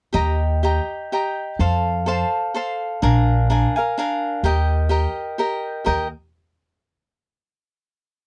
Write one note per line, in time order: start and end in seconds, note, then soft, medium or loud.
0.13 0.78 D#2 medium
0.13 0.62 G4 soft
0.13 0.62 D#5 medium
0.13 0.63 G5 medium
0.13 0.63 A#5 medium
0.63 1.11 G4 soft
0.63 1.12 D#5 medium
0.63 1.12 G5 medium
0.63 1.13 A#5 medium
1.12 1.59 G4 soft
1.12 1.60 D#5 medium
1.12 1.60 G5 medium
1.12 1.60 A#5 soft
1.59 2.22 F2 medium
1.59 2.05 A4 medium
1.59 2.06 C5 medium
1.59 2.07 F5 medium
1.59 2.07 A5 medium
2.06 2.53 A4 medium
2.06 2.54 C5 medium
2.06 2.55 F5 medium
2.06 2.55 A5 medium
2.54 3.02 A4 medium
2.54 3.03 C5 medium
2.54 3.02 F5 medium
2.54 3.03 A5 medium
3.02 3.64 A#1 medium
3.02 3.49 D4 medium
3.02 3.50 A#4 medium
3.02 3.50 F5 medium
3.02 3.50 G#5 medium
3.50 3.76 D4 medium
3.50 3.76 A#4 medium
3.50 3.76 F5 medium
3.50 3.75 G#5 medium
3.76 3.97 A#4 soft
3.76 3.97 F5 soft
3.76 3.98 G#5 medium
3.98 4.43 D4 medium
3.98 4.44 A#4 medium
3.98 4.45 F5 medium
3.98 4.45 G#5 medium
4.43 5.05 D#2 medium
4.43 4.89 G4 medium
4.43 4.90 A#4 medium
4.43 4.90 D#5 medium
4.43 4.91 G5 medium
4.89 5.38 G4 medium
4.89 5.39 A#4 medium
4.89 5.39 D#5 soft
4.89 5.40 G5 medium
5.38 5.84 G4 soft
5.38 5.85 A#4 medium
5.38 5.86 D#5 medium
5.38 5.87 G5 medium
5.84 6.10 D#2 medium
5.84 6.06 G4 soft
5.84 6.07 A#4 medium
5.84 6.07 D#5 medium
5.84 6.07 G5 medium